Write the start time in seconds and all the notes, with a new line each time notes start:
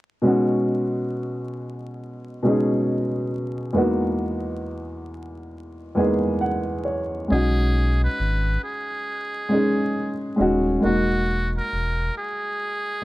0.22 B2 G#3 C#4
0.26 D#4 F#4
2.42 B2 G#3 C#4
2.47 D#4 G#4
3.73 E2 G#3 A#3 B3
3.77 D#4 F#4
5.95 E2 G#3 A#3 B3 G#5
5.99 D#4 G#4
6.41 F#5
6.85 C#5
7.28 B1 G#3 C#4 D#4
7.32 F#4 G#4
8.04 B4
8.20 G#1
8.64 G#4
9.49 G#3 C#4 D#4
9.54 G#4
10.36 G#3 C#4 D#4
10.40 D#1 F#4
10.80 G#3 A#3 D#4
10.84 E1 F#4
11.58 A#4
11.73 E1
12.18 G#4